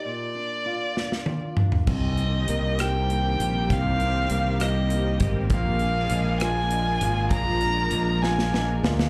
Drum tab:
CC |------------|x-----------|------------|------------|
HH |------------|--x-x-x-x-x-|x-x-x-x-x-x-|x-x-x-x-x-x-|
SD |------oo----|------r-----|------r-----|------r-----|
T1 |--------o---|------------|------------|------------|
T2 |----------o-|------------|------------|------------|
FT |-----------o|------------|------------|------------|
BD |------------|o-----------|o---------o-|o-----------|

CC |------------|
HH |x-x-x-------|
SD |------ooo-oo|
T1 |------------|
T2 |------------|
FT |------------|
BD |o-----------|